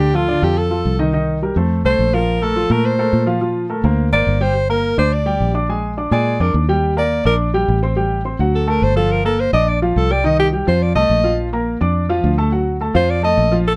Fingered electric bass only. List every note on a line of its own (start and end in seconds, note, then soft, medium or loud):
0.00 0.37 D2 medium
0.42 0.82 F2 medium
0.85 1.51 C2 medium
1.56 1.83 F2 medium
1.85 1.98 C2 medium
1.99 2.65 A#1 medium
2.70 3.10 A#2 medium
3.13 3.79 A#2 medium
3.84 4.10 D2 medium
4.12 4.26 G#1 medium
4.27 4.92 G1 medium
4.98 5.38 D2 medium
5.40 6.06 A#1 medium
6.11 6.38 A#2 medium
6.40 6.53 F2 medium
6.54 7.20 D#2 medium
7.25 7.65 A#1 medium
7.68 8.34 A1 medium
8.39 8.79 D2 medium
8.82 9.48 G1 medium
9.53 9.93 A#1 medium
9.96 10.62 C2 medium
10.68 10.94 F2 medium
10.95 11.09 C2 medium
11.10 11.75 A#1 medium
11.81 12.21 F2 medium
12.24 12.89 D2 medium
12.95 13.34 F2 medium
13.37 13.77 A#1 medium